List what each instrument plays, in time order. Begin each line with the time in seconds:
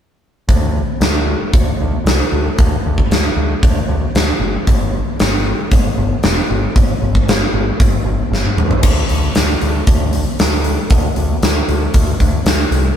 0.48 picked electric bass D2, kick, open hi-hat
1.01 picked electric bass D2, snare, open hi-hat
1.53 picked electric bass D2, kick, open hi-hat
1.81 picked electric bass D2
2.04 picked electric bass C2, snare, open hi-hat
2.32 picked electric bass D2
2.58 picked electric bass D2, kick, open hi-hat
2.86 picked electric bass D2
2.98 kick
3.11 picked electric bass D2, snare, open hi-hat
3.37 picked electric bass D2
3.63 picked electric bass D2, kick, open hi-hat
3.89 picked electric bass D2
4.15 picked electric bass D2, snare, open hi-hat
4.40 picked electric bass F#1
4.67 picked electric bass G1, kick, open hi-hat
5.20 picked electric bass G1, snare, open hi-hat
5.71 picked electric bass G1, kick, open hi-hat
5.98 picked electric bass G1
6.23 picked electric bass E1, snare, open hi-hat
6.50 picked electric bass G1
6.76 picked electric bass G1, kick, open hi-hat
7.02 picked electric bass G1
7.15 kick
7.28 picked electric bass G1, snare, open hi-hat
7.53 picked electric bass G1
7.80 picked electric bass G1, kick, open hi-hat
8.05 picked electric bass G1
8.31 picked electric bass G1, snare
8.46 high tom
8.57 picked electric bass E2, mid tom
8.71 floor tom
8.83 picked electric bass D2, kick, crash
9.09 picked electric bass D2, open hi-hat
9.35 picked electric bass D2, snare, open hi-hat
9.61 picked electric bass D2, open hi-hat
9.87 picked electric bass D2, kick, open hi-hat
10.13 open hi-hat
10.39 picked electric bass D2, snare, open hi-hat
10.64 open hi-hat
10.90 picked electric bass D2, kick, open hi-hat
11.16 picked electric bass D2, open hi-hat
11.42 picked electric bass D2, snare, open hi-hat
11.68 picked electric bass D2, open hi-hat
11.94 picked electric bass D2, kick, open hi-hat
12.20 picked electric bass D2, kick, open hi-hat
12.45 picked electric bass D2, snare, open hi-hat
12.71 picked electric bass C2, open hi-hat